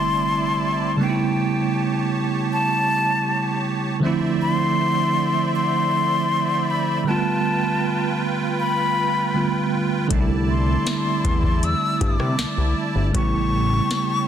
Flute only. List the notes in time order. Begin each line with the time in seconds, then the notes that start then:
Already playing: C6
1.02 G5
2.53 A5
4.42 C6
5.56 C6
6.70 B5
7.08 A5
8.60 B5
10.50 C6
11.64 E6
12.02 D6
13.15 C#6